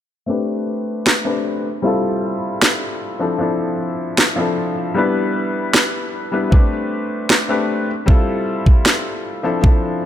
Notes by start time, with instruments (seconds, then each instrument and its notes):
0.26 felt piano A3 C4 D4 G4
0.30 felt piano B4
1.07 snare
1.25 felt piano A3 C4 D4 G4 B4
1.82 felt piano G3 C4 E4 F4 A4
2.62 snare
3.20 felt piano F3 C4 D4 E4 A4
3.38 felt piano F3 C4 D4 E4
3.42 felt piano A4
4.18 snare
4.36 felt piano F3 C4 D4 E4 A4
4.94 felt piano G3 B3 D4 E4
4.98 felt piano B4
5.74 snare
6.32 felt piano G3 B3 D4 E4 B4
6.50 felt piano A3 C4 D4 G4 B4, kick
7.30 snare
7.49 felt piano A3 C4 D4 G4 B4
8.06 felt piano G3 C4 E4 F4, kick
8.10 felt piano A4
8.66 kick
8.86 snare
9.43 felt piano F3 C4 D4 E4 A4
9.62 felt piano F3 C4 D4 E4, kick